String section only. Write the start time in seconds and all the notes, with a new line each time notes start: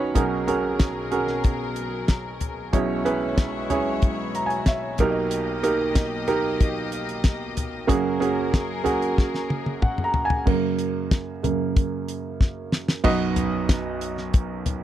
Already playing: B2 F#3 D#4 C#5
0.15 B2 F#3 G#4 A#4
2.74 B2 G#3 E4 C#5
4.99 A#3 G4 D#5
7.88 F#2 F#3 G#4 A#4